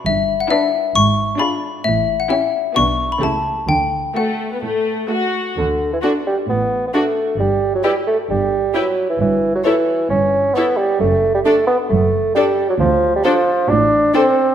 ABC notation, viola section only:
X:1
M:4/4
L:1/8
Q:1/4=133
K:D
V:1 name="Viola section"
z2 D2 z2 D2 | z2 C2 B,2 A,2 | z2 A,2 z2 A,2 | z2 D2 z2 D2 |
z2 E2 z2 E2 | z2 E2 z2 E2 | z2 D2 z2 D2 | [K:Dm] z2 D2 z2 D2 |]